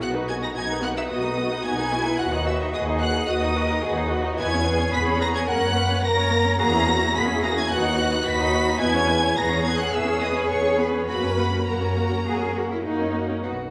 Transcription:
0.02 double bass section B1, viola section B3 F#4, cello section F#4, violin section F#5 F#6
0.16 viola section D#4 B4
0.29 viola section B3 F#4, violin section G#5 G#6
0.43 viola section D#4 B4, violin section A#5 A#6
0.56 double bass section B1, viola section B3 F#4, cello section D#4, violin section G#5 G#6
0.70 viola section D#4 B4
0.83 viola section B3 F#4, violin section F#5 F#6
0.97 viola section D#4 B4, violin section E5 E6
1.09 double bass section B1, viola section B3 F#4, cello section F#4, violin section D#5 D#6
1.25 viola section D#4 B4
1.38 viola section B3 F#4
1.52 viola section D#4 B4
1.64 double bass section B1, viola section B3 F#4, cello section D#4, violin section G#5 G#6
1.79 viola section D#4 B4
1.93 viola section B3 F#4, cello section E4
2.06 viola section D#4 B4
2.19 double bass section D#2, viola section F#4 B4, cello section F#4, violin section F#5 F#6
2.34 viola section D#4 D#5
2.47 viola section F#4 B4, violin section E5 E6
2.61 viola section D#4 D#5
2.73 double bass section D#2, viola section F#4 B4, cello section G#4, violin section D#5 D#6
2.89 viola section D#4 D#5
3.01 viola section F#4 B4, violin section F#5 F#6
3.17 viola section D#4 D#5
3.29 double bass section D#2, cello section F#4, viola section F#4 B4, violin section D#5 D#6
3.44 viola section D#4 D#5
3.57 viola section F#4 B4, cello section A#4
3.71 viola section D#4 D#5
3.84 double bass section D#2, viola section F#4 B4, cello section G#4
3.98 viola section D#4 D#5
4.11 viola section F#4 B4, cello section F#4
4.25 viola section D#4 D#5
4.38 double bass section E2, viola section B3 B4, cello section E4, violin section G#5 G#6
4.53 viola section C#4 C#5
4.66 viola section B3 B4, cello section G#4
4.80 viola section C#4 C#5
4.93 double bass section E2, viola section B3 B4, violin section B5 B6
5.07 viola section C#4 C#5
5.20 viola section B3 B4, violin section A#5 A#6
5.34 viola section C#4 C#5, violin section G#5 G#6
5.48 double bass section F#2, viola section A#3 A#4, cello section A#4, violin section F#5 F#6
5.62 viola section C#4 C#5
5.76 viola section A#3 A#4, cello section B4
5.90 viola section C#4 C#5
6.03 double bass section F#2, viola section A#3 A#4, cello section A#4, violin section A#5 A#6
6.18 viola section C#4 C#5
6.32 viola section A#3 A#4
6.45 viola section C#4 C#5
6.59 double bass section E2, viola section A#3 F#4, cello section G#4, violin section A#5 A#6
6.74 viola section C#4 E4
6.88 viola section A#3 F#4, cello section F#4
7.01 viola section C#4 E4
7.16 double bass section E2, viola section A#3 F#4, cello section G#4, violin section B5 B6
7.29 viola section C#4 E4
7.43 viola section A#3 F#4, violin section A#5 A#6
7.57 viola section C#4 E4, violin section G#5 G#6
7.70 double bass section D#2, viola section F#4 B4, cello section F#4, violin section F#5 F#6
7.84 viola section D#4 D#5
7.98 viola section F#4 B4
8.12 viola section D#4 D#5
8.25 double bass section D#2, viola section F#4 B4, cello section F#4, violin section B5 B6
8.40 viola section D#4 D#5
8.54 viola section F#4 B4
8.68 viola section D#4 D#5
8.81 double bass section E2, viola section B3 B4, cello section E4, violin section G#5 G#6
8.96 viola section C#4 C#5
9.10 viola section B3 B4
9.24 viola section C#4 C#5
9.37 double bass section E2, viola section B3 B4, cello section G#4, violin section A#5 A#6
9.52 viola section C#4 C#5
9.65 viola section B3 B4, violin section G#5 G#6
9.79 viola section C#4 C#5, violin section F#5 F#6
9.94 double bass section E2, viola section B3 B4, violin section E5 E6
10.07 viola section C#4 C#5
10.21 viola section B3 B4, violin section D#5 D#6
10.35 viola section C#4 C#5, violin section B4 B5
10.50 double bass section E2, viola section B3 B4, violin section C#5 C#6
10.64 viola section C#4 C#5
10.79 viola section B3 B4, violin section B4 B5
10.95 viola section C#4 C#5
11.09 double bass section F#2, viola section A#3 F#4, cello section F#4, violin section B4 B5
11.24 viola section C#4 A#4
11.39 viola section A#3 F#4
11.53 viola section C#4 A#4
11.68 double bass section F#2, viola section A#3 F#4, cello section F#4, violin section A#4 A#5
11.83 viola section C#4 A#4
11.97 viola section A#3 F#4
12.12 viola section C#4 A#4
12.26 double bass section F#2, viola section A#3 F#4, cello section G#4
12.41 viola section C#4 A#4
12.55 viola section A#3 F#4, cello section F#4
12.70 viola section C#4 A#4, cello section E4
12.84 double bass section F#2, viola section A#3 F#4, cello section D#4
12.99 viola section C#4 A#4
13.14 viola section A#3 F#4
13.29 viola section C#4 A#4
13.43 double bass section B1, cello section B2, viola section D#4 B4, violin section F#4 F#5

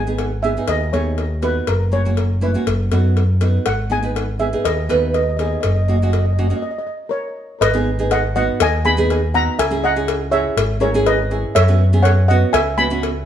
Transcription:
Already playing: picked electric bass G#1, steel pan G#5
0.07 nylon-string guitar B3 D#4 G#4
0.18 cowbell
0.43 nylon-string guitar B3 D#4 G#4, steel pan E5
0.57 nylon-string guitar B3 D#4 G#4
0.68 picked electric bass D#2, steel pan D#5, cowbell
0.93 picked electric bass D#2, nylon-string guitar B3 D#4 G#4, steel pan C#5, cowbell
1.18 cowbell
1.42 nylon-string guitar B3 D#4 F#4, steel pan B4, cowbell
1.67 picked electric bass F#1, steel pan A#4, cowbell
1.92 nylon-string guitar A#3 C#4 F#4, steel pan C#5
2.05 nylon-string guitar A#3 C#4 F#4
2.17 cowbell
2.41 nylon-string guitar A#3 C#4 E4, steel pan B4
2.54 nylon-string guitar A#3 C#4 F#4
2.67 picked electric bass F#1, cowbell
2.91 picked electric bass F#2, nylon-string guitar B3 D#4 F#4, cowbell
3.17 cowbell
3.41 nylon-string guitar B3 D#4 F#4, cowbell
3.66 picked electric bass G#1, steel pan F#5, cowbell
3.90 nylon-string guitar B3 D#4 G#4, steel pan G#5
4.03 nylon-string guitar B3 D#4 B4
4.16 cowbell
4.39 nylon-string guitar B3 D#4 G#4, steel pan E5
4.53 nylon-string guitar B3 D#4 G#4
4.65 picked electric bass D#2, steel pan D#5, cowbell
4.89 picked electric bass D#2, nylon-string guitar B3 D#4 B4, cowbell
5.14 steel pan D#5, cowbell
5.23 steel pan D#5
5.29 steel pan D#5
5.37 nylon-string guitar B3 D#4 G#4, steel pan D#5, cowbell
5.45 steel pan D#5
5.53 steel pan D#5
5.61 picked electric bass F#1, steel pan D#5, cowbell
5.67 steel pan D#5
5.75 steel pan D#5
5.82 steel pan D#5
5.88 nylon-string guitar A#3 C#4 F#4, steel pan D#5
5.96 steel pan D#5
6.02 nylon-string guitar A#3 C#4 F#4, steel pan D#5
6.10 steel pan D#5, cowbell
6.19 steel pan D#5
6.25 steel pan D#5
6.33 steel pan D#5
6.38 nylon-string guitar A#3 C#4 F#4, steel pan D#5
6.48 nylon-string guitar A#3 C#4 F#4, steel pan D#5
6.57 steel pan D#5
6.62 steel pan D#5
6.71 steel pan D#5
6.78 steel pan D#5
6.87 steel pan D#5
7.09 steel pan A#4 C#5
7.61 picked electric bass G#1, steel pan B4 D#5, cowbell
7.74 nylon-string guitar B3 D#4 G#4
7.99 nylon-string guitar B3 D#4 G#4
8.11 steel pan D#5 F#5, cowbell
8.36 nylon-string guitar B3 D#4 F#4, steel pan D#5 F#5
8.60 picked electric bass D#2, steel pan D#5 G#5, cowbell
8.85 nylon-string guitar B3 D#4 G#4, steel pan G#5 B5
8.97 nylon-string guitar B3 D#4 G#4
9.10 cowbell
9.34 nylon-string guitar B3 D#4 F#4, steel pan F#5 A#5
9.59 picked electric bass C#2, steel pan E5 G#5, cowbell
9.70 nylon-string guitar C#4 E4 G#4
9.84 steel pan D#5 F#5
9.96 nylon-string guitar C#4 E4 G#4
10.08 cowbell
10.31 nylon-string guitar C#4 E4 G#4, steel pan C#5 E5
10.57 picked electric bass G#1, cowbell
10.80 nylon-string guitar C#4 E4 G#4, steel pan A#4 C#5
10.94 nylon-string guitar C#4 E4 G#4
11.06 steel pan B4 D#5, cowbell
11.31 nylon-string guitar C#4 E4 G#4
11.55 picked electric bass F#2, steel pan C#5 E5, cowbell
11.68 nylon-string guitar B3 C#4 F#4
11.93 nylon-string guitar B3 C#4 G#4
12.03 steel pan C#5 F#5, cowbell
12.28 nylon-string guitar B3 C#4 F#4, steel pan D#5 F#5
12.53 picked electric bass C#2, steel pan E5 G#5, cowbell
12.78 nylon-string guitar B3 C#4 F#4, steel pan G#5 B5
12.90 nylon-string guitar B3 C#4 F#4
13.03 cowbell

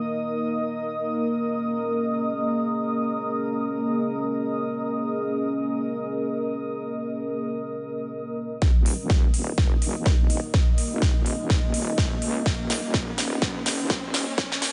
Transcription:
Already playing: ambient pad A#3 D#4 A#4 D#5 D#6
0.94 ambient pad C#4 G#4
8.62 wobble bass D#1, ambient pad A#3 D#4 D#5, kick, snare, riser
8.76 wobble bass D#1
8.86 open hi-hat
9.10 wobble bass E1, kick, snare
9.34 wobble bass D#1, open hi-hat
9.58 wobble bass F#1, kick, snare
9.82 open hi-hat
9.96 wobble bass D#2
10.06 kick, snare
10.20 wobble bass D#1
10.30 open hi-hat
10.54 kick, snare
10.78 open hi-hat
10.92 wobble bass F#1
11.02 kick, snare
11.16 wobble bass D#1
11.26 open hi-hat
11.40 wobble bass D#1
11.50 kick, snare
11.74 wobble bass D#1, open hi-hat
11.98 kick, snare
12.22 wobble bass C#2, open hi-hat
12.46 wobble bass D#1, ambient pad C#4, kick, snare
12.60 wobble bass D#1
12.70 snare, open hi-hat
12.94 wobble bass E1, kick, snare
13.18 wobble bass D#1, snare, open hi-hat
13.42 wobble bass F#1, kick, snare
13.66 snare, open hi-hat
13.80 wobble bass D#2
13.90 kick, snare
14.04 wobble bass D#1
14.14 snare, open hi-hat
14.38 kick, snare
14.52 snare
14.62 snare, open hi-hat

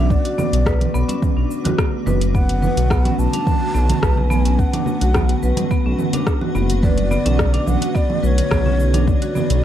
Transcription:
Already playing: analog synth bass B1, ambient pad D3 A3 F#4 B4 D6, marimba D4, ney E5
0.10 ney D5, kick, shaker
0.25 marimba F#4, closed hi-hat, high conga
0.38 marimba B3, low conga, shaker
0.53 analog synth bass B1, closed hi-hat, high conga, shaker
0.66 marimba B4, kick, cross-stick, muted conga, shaker
0.81 closed hi-hat, low conga
0.94 analog synth bass B1, marimba B3, shaker
1.09 marimba C#4, closed hi-hat, muted conga, high conga, shaker
1.22 kick, low conga, shaker
1.37 analog synth bass B1, marimba D4
1.51 shaker
1.65 marimba F#4, closed hi-hat, high conga, low conga, shaker
1.78 marimba B3, kick, cross-stick, shaker
2.06 analog synth bass F#1, marimba B4, low conga, shaker
2.21 closed hi-hat, shaker
2.34 marimba B3, ambient pad F#5, ney F#5, kick, shaker
2.49 closed hi-hat, muted conga, high conga
2.62 marimba B4, low conga, shaker
2.76 analog synth bass B1, closed hi-hat, high conga, shaker
2.90 marimba B3, kick, cross-stick, muted conga, shaker
3.05 marimba C#4, closed hi-hat, low conga
3.19 analog synth bass B1, ney A5, shaker
3.33 marimba D4, closed hi-hat, muted conga, high conga, shaker
3.47 kick, low conga, shaker
3.61 marimba F#4
3.75 analog synth bass B1, marimba B3, muted conga, shaker
3.90 closed hi-hat, low conga, shaker
4.02 analog synth bass B1, marimba B4, kick, cross-stick, shaker
4.17 high conga, low conga
4.30 marimba B3, ney G#5, low conga, shaker
4.45 marimba C#4, closed hi-hat, shaker
4.59 ney F#5, kick, shaker
4.73 marimba D4, closed hi-hat, high conga, low conga
4.86 low conga, shaker
5.01 analog synth bass B1, marimba F#4, closed hi-hat, high conga, shaker
5.14 marimba B3, kick, cross-stick, muted conga, low conga, shaker
5.29 closed hi-hat
5.43 analog synth bass B1, marimba B4, shaker
5.57 closed hi-hat, muted conga, high conga, low conga, shaker
5.71 marimba B3, kick, shaker
5.86 analog synth bass B1, marimba C#4
5.99 low conga, shaker
6.13 marimba D4, closed hi-hat, high conga, low conga, shaker
6.27 kick, cross-stick, shaker
6.41 marimba F#4, low conga
6.55 analog synth bass F#1, marimba B3, low conga, shaker
6.70 closed hi-hat, shaker
6.83 marimba B4, ney D5, kick, low conga, shaker
6.97 closed hi-hat, muted conga, high conga
7.11 marimba B3, low conga, shaker
7.25 analog synth bass B1, marimba C#4, closed hi-hat, high conga, low conga, shaker
7.39 kick, cross-stick, muted conga, shaker
7.54 marimba D4, closed hi-hat
7.67 analog synth bass B1, ney F#5, low conga, shaker
7.81 marimba F#4, closed hi-hat, muted conga, high conga, shaker
7.95 marimba B3, ney D5, kick, shaker
8.10 low conga
8.23 analog synth bass B1, marimba B4, ney D5, muted conga, shaker
8.27 ney C#5
8.38 closed hi-hat, shaker
8.51 analog synth bass B1, marimba B3, kick, cross-stick, low conga, shaker
8.66 marimba C#4, high conga, low conga
8.80 shaker
8.94 marimba D4, closed hi-hat, low conga, shaker
9.07 ney D5, kick, shaker
9.22 marimba F#4, closed hi-hat, muted conga, high conga, shaker
9.35 marimba B3, low conga, shaker
9.50 analog synth bass B1, closed hi-hat, high conga, shaker

